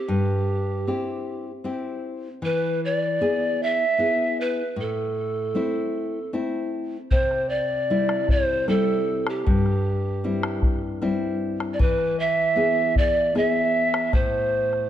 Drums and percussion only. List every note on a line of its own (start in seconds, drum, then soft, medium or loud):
7.11 bombo low medium
7.31 bombo rim soft
8.09 bombo rim soft
8.29 bombo low medium
8.68 bombo rim soft
9.27 bombo rim medium
9.47 bombo low medium
9.66 bombo rim soft
10.43 bombo rim medium
10.62 bombo low medium
11.02 bombo rim soft
11.60 bombo rim soft
11.80 bombo low medium
11.98 bombo rim soft
12.96 bombo low medium
13.36 bombo rim soft
13.94 bombo rim medium
14.13 bombo rim soft
14.13 bombo low medium
14.73 bombo rim soft